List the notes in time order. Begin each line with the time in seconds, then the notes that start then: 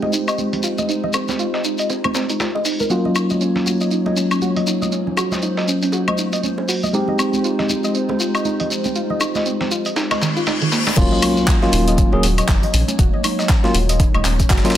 Already playing: G#3 C4 D#4 F4 G4 C5
0.02 D#5, high bongo, high conga
0.13 D#4, tambourine, shekere
0.28 D#5, high woodblock, shekere
0.38 C4, tambourine, high conga, shekere
0.53 C4, closed hi-hat, low conga
0.63 F4, tambourine, shekere
0.78 D#5, high conga, shekere
0.89 D#4, tambourine, shekere
1.03 D#5, low conga
1.13 C4, tambourine, high bongo, high woodblock, shekere
1.28 C4, snare, high conga, shekere
1.39 F4, tambourine, shekere
1.54 D#5, snare
1.64 D#4, tambourine, shekere
1.78 D#5, closed hi-hat, shekere
1.90 C4, tambourine, high bongo, shekere
2.04 C4, high conga, high woodblock
2.15 C4, snare, tambourine, shekere
2.29 D#4, closed hi-hat, high bongo, shekere
2.40 F4, snare, tambourine, high conga, shekere
2.55 D#5, high bongo
2.65 D#4, open hi-hat, shekere
2.80 A#4, high conga, shekere
2.90 F#3 A#3 C#4 F4 F#4 C#5, tambourine, shekere
3.05 D#5, low conga
3.15 D#4, tambourine, high woodblock, shekere
3.30 D#5, high conga, shekere
3.41 C#4, tambourine, shekere
3.55 C#4, snare, low conga
3.66 F#4, tambourine, high conga, shekere
3.81 D#5, shekere
3.91 D#4, tambourine, shekere
4.06 D#5, high bongo, high conga
4.16 C#4, tambourine, shekere
4.31 C#4, high woodblock, shekere
4.41 F#4, tambourine, high conga, shekere
4.56 D#5, closed hi-hat, low conga
4.67 D#4, tambourine, shekere
4.82 D#5, high conga, shekere
4.92 C#4 C5, tambourine, shekere
5.07 C#4, low conga
5.17 F#4, tambourine, high bongo, high woodblock, shekere
5.32 D#5, snare, high conga, shekere
5.42 D#4, tambourine, shekere
5.57 D#5, snare
5.68 C#4, tambourine, shekere
5.82 C#4, closed hi-hat, shekere
5.92 F#4, tambourine, high bongo, shekere
6.08 D#5, high conga, high woodblock
6.18 D#4, tambourine, shekere
6.33 D#5, closed hi-hat, shekere
6.43 C#4, tambourine, high conga, shekere
6.58 C#4, high bongo
6.69 F#4, open hi-hat, shekere
6.83 D#5, high conga, shekere
6.93 G#3 C4 D#4 F4 G4, tambourine, shekere
7.08 D#5, low conga
7.19 C4, tambourine, high woodblock, shekere
7.33 C4, high conga, shekere
7.44 F4, tambourine, shekere
7.59 D#5, snare, low conga
7.69 D#4, tambourine, high conga, shekere
7.84 D#5, shekere
7.95 C4, tambourine, shekere
8.09 C4, high bongo, high conga
8.20 F4, tambourine, shekere
8.35 D#5, high woodblock, shekere
8.45 D#4, tambourine, high conga, shekere
8.60 D#5, closed hi-hat, low conga
8.70 C4, tambourine, shekere
8.84 C4, high conga, shekere
8.95 F4, tambourine, shekere
9.10 D#5, low conga
9.20 D#4, tambourine, high bongo, high woodblock, shekere
9.35 D#5, snare, high conga, shekere
9.46 C4, tambourine, shekere
9.61 C4, snare, low conga
9.71 F4, tambourine, shekere
9.85 D#5, closed hi-hat, shekere
9.96 D#4, snare, tambourine, high bongo, reverse cymbal, shekere
10.11 D#5, snare, tambourine, high conga, high woodblock
10.22 D#3, snare, tambourine, shekere
10.36 F4, high bongo, shekere
10.47 D#4, snare, tambourine, high conga, shekere
10.62 D#3, closed hi-hat, high bongo
10.72 A#3, snare, tambourine, shekere
10.87 D#4, snare, tambourine, high conga, shekere
10.96 D#1 F#3 A#3 C#4 D#4 F4 C#5, kick, closed hi-hat, crash, tambourine, impact, shekere
11.12 D#5, low conga
11.22 C#4, open hi-hat, tambourine, high conga, high woodblock, shekere
11.37 C#4, shekere
11.47 F#4, kick, snare, clap, closed hi-hat, tambourine, shekere
11.62 F#3 A#3 C#4 F4 D#5, snare, high conga, low conga
11.72 D#1 D#4, open hi-hat, tambourine, shekere
11.88 D#5, closed hi-hat, shekere
11.98 C#4, kick, closed hi-hat, tambourine, shekere
12.12 D#1 F#3 A#3 C#4 G#4, high bongo, high conga
12.23 D#1 F#4, open hi-hat, tambourine, shekere
12.38 D#5, closed hi-hat, high woodblock, shekere
12.48 F#1 D#4, kick, snare, clap, closed hi-hat, tambourine, high conga, shekere
12.63 D#5, closed hi-hat, low conga
12.74 A#1 C#4, open hi-hat, tambourine, shekere
12.88 C#4, closed hi-hat, high conga, shekere
12.99 D#1 F#4, kick, closed hi-hat, tambourine, shekere
13.13 D#5, low conga
13.23 D#4, open hi-hat, tambourine, high bongo, high conga, high woodblock, shekere
13.39 D#5, snare, shekere
13.49 C#4, kick, snare, clap, closed hi-hat, tambourine, shekere
13.64 F#3 A#3 C#4 F4, snare, high conga
13.74 D#1 F#4, open hi-hat, tambourine, shekere
13.89 D#5, closed hi-hat, shekere
14.00 D#4, kick, closed hi-hat, tambourine, high bongo, shekere
14.14 D#1 D#5, high conga, high woodblock
14.25 D#1 C#4, clap, open hi-hat, tambourine, shekere
14.39 C#4, kick, closed hi-hat, shekere
14.50 F#1 F#4, kick, snare, clap, closed hi-hat, tambourine, high conga, shekere
14.57 snare, tambourine
14.65 F#3 A#3 C#4 F4 D#5, snare, tambourine, high bongo
14.70 snare, tambourine